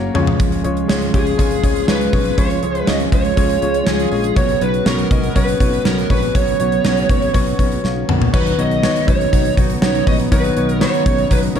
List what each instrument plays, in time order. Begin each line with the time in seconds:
Already playing: analog synth pad C#3 F#3 A#3 F#4, grand piano A#3 C#4 F#4 C#5, clean electric guitar A#3 C#4 F#4
0.14 fretless electric bass C#2, grand piano C#3 G#3 C#4 F4 C#5, clean electric guitar F3, analog synth pad F3 G#3 F4, mid tom
0.27 floor tom
0.40 clean electric guitar F3, kick, closed hi-hat
0.52 closed hi-hat
0.64 fretless electric bass C#2, grand piano G#3 C#4 F4 C#5, clean electric guitar G#3, closed hi-hat
0.77 closed hi-hat
0.88 fretless electric bass C#2, grand piano G#3 C#4 F4 C#5, clean electric guitar C#4, snare
1.02 closed hi-hat
1.13 fretless electric bass C#2, grand piano G#3 C#4 F4 C#5, clean electric guitar G#3, lead electric guitar G#4, kick, closed hi-hat
1.27 closed hi-hat
1.38 fretless electric bass C#2, grand piano G#3 C#4 F4 C#5, clean electric guitar C#4, kick, closed hi-hat
1.51 closed hi-hat
1.63 fretless electric bass C#2, grand piano G#3 C#4 F4 C#5, clean electric guitar G#3, kick, closed hi-hat
1.76 closed hi-hat
1.87 fretless electric bass C#2, clean electric guitar F3, grand piano G#3 C#4 F4 C#5, lead electric guitar B4, snare
2.01 closed hi-hat
2.12 fretless electric bass B1, grand piano C#3 G#3 C#4 F4 C#5, clean electric guitar G#3, kick, open hi-hat
2.26 closed hi-hat
2.37 fretless electric bass C#2, clean electric guitar F3, grand piano G#3 C#4 F4 C#5, lead electric guitar C#5, kick, closed hi-hat
2.50 closed hi-hat
2.62 fretless electric bass C#2, grand piano G#3 C#4 F4 C#5, clean electric guitar G#3, closed hi-hat
2.75 closed hi-hat
2.87 fretless electric bass C#2, grand piano G#3 C#4 F4 C#5, clean electric guitar C#4, lead electric guitar D#5, snare
3.00 closed hi-hat
3.12 fretless electric bass C#2, grand piano G#3 C#4 F4 D#5, clean electric guitar G#3, lead electric guitar C#5, kick, closed hi-hat
3.25 closed hi-hat
3.36 fretless electric bass C#2, grand piano G#3 C#4 F4 C#5, clean electric guitar C#4, kick, closed hi-hat
3.49 closed hi-hat
3.62 fretless electric bass C#2, grand piano G#3 C#4 F4 C#5, clean electric guitar G#3, closed hi-hat
3.74 closed hi-hat
3.86 fretless electric bass C#2, clean electric guitar F3, grand piano G#3 C#4 F4 C#5, lead electric guitar G#4, snare
4.00 closed hi-hat
4.11 fretless electric bass A#1, grand piano G#3 C#4 F4 C#5, clean electric guitar G#3, open hi-hat
4.24 closed hi-hat
4.36 fretless electric bass B1, grand piano B2 B3 C#4 F#4 C#5, analog synth pad C#3 F#3 B3 F#4, clean electric guitar F#3, lead electric guitar C#5, kick, closed hi-hat
4.49 closed hi-hat
4.60 fretless electric bass B1, grand piano B3 C#4 F#4 C#5, clean electric guitar B3, lead electric guitar B4, closed hi-hat
4.74 closed hi-hat
4.85 fretless electric bass B1, grand piano B3 C#4 F#4 C#5, clean electric guitar C#4, lead electric guitar A#4, snare
4.99 closed hi-hat
5.10 fretless electric bass B1, grand piano B3 C#4 F#4 D#5, clean electric guitar B3, kick, closed hi-hat
5.24 closed hi-hat
5.35 fretless electric bass B1, grand piano B3 C#4 F#4 C#5, clean electric guitar C#4, lead electric guitar B4, kick, closed hi-hat
5.48 closed hi-hat
5.60 fretless electric bass B1, grand piano B3 C#4 F#4 C#5, clean electric guitar B3, kick, closed hi-hat
5.73 closed hi-hat
5.84 fretless electric bass B1, clean electric guitar F#3, grand piano B3 C#4 F#4 C#5, lead electric guitar A#4, snare
5.98 closed hi-hat
6.09 fretless electric bass A#1, grand piano B3 C#4 F#4 C#5, clean electric guitar B3, lead electric guitar B4, kick, open hi-hat
6.23 closed hi-hat
6.34 fretless electric bass B1, grand piano B2 B3 C#4 F#4 C#5, clean electric guitar F#3, lead electric guitar C#5, kick, closed hi-hat
6.48 closed hi-hat
6.59 fretless electric bass B1, grand piano B3 C#4 F#4 C#5, clean electric guitar B3, closed hi-hat
6.72 closed hi-hat
6.84 fretless electric bass B1, grand piano B3 C#4 F#4 C#5, clean electric guitar C#4, snare
6.97 closed hi-hat
7.09 fretless electric bass B1, grand piano B3 C#4 F#4 C#5, clean electric guitar B3, kick, closed hi-hat
7.22 closed hi-hat
7.33 fretless electric bass B1, grand piano B3 C#4 F#4 C#5, clean electric guitar C#4, kick, closed hi-hat
7.47 closed hi-hat
7.58 fretless electric bass B1, grand piano B3 C#4 F#4 C#5, clean electric guitar B3, kick, closed hi-hat
7.72 closed hi-hat
7.84 fretless electric bass B1, clean electric guitar F#3, grand piano F5 C#6, snare
8.08 fretless electric bass A#1, clean electric guitar B3, grand piano A#4 F#5, mid tom
8.22 floor tom
8.33 fretless electric bass B1, grand piano B2 B3 D#4 F#4 C#5, analog synth pad C#3 F#3 B3 D#4, clean electric guitar D#3 F#4, lead electric guitar B4, kick, crash
8.46 closed hi-hat
8.58 fretless electric bass B1, grand piano B3 D#4 F#4 C#5, clean electric guitar B3, lead electric guitar D#5, closed hi-hat
8.71 closed hi-hat
8.82 grand piano B3 D#4 F#4 C#5, clean electric guitar F#4, snare
8.96 closed hi-hat
9.07 fretless electric bass B1, grand piano B3 D#4 F#4 C#5, clean electric guitar C#4, lead electric guitar C#5, kick, closed hi-hat
9.21 closed hi-hat
9.32 fretless electric bass B1, grand piano B3 D#4 F#4 C#5, clean electric guitar B3, kick, closed hi-hat
9.45 closed hi-hat
9.57 fretless electric bass B1, grand piano B3 D#4 F#4 C#5, clean electric guitar F#4, kick, closed hi-hat
9.70 closed hi-hat
9.81 fretless electric bass B1, grand piano B3 D#4 F#4 C#5, clean electric guitar C#4, lead electric guitar C#5, snare
9.95 closed hi-hat
10.06 fretless electric bass A#1, grand piano B3 D#4 F#4 C#5, clean electric guitar B3, lead electric guitar D#5, kick, open hi-hat
10.20 closed hi-hat
10.31 fretless electric bass B1, grand piano B2 B3 D#4 F#4 C#5, clean electric guitar D#3 F#4, lead electric guitar B4, kick, closed hi-hat
10.44 closed hi-hat
10.56 fretless electric bass B1, grand piano B3 D#4 F#4 C#5, clean electric guitar B3, closed hi-hat
10.69 lead electric guitar A#4, closed hi-hat
10.81 grand piano B3 D#4 F#4 C#5, clean electric guitar F#4, lead electric guitar C#5, snare
10.94 closed hi-hat
11.05 fretless electric bass B1, grand piano B3 D#4 F#4 C#5, clean electric guitar C#4, kick, closed hi-hat
11.18 closed hi-hat
11.30 fretless electric bass B1, grand piano B3 D#4 F#4 C#5, clean electric guitar B3, lead electric guitar B4, kick, closed hi-hat
11.43 closed hi-hat
11.55 fretless electric bass B1, grand piano B3 D#4 F#4 C#5, clean electric guitar F#4, lead electric guitar A#4, closed hi-hat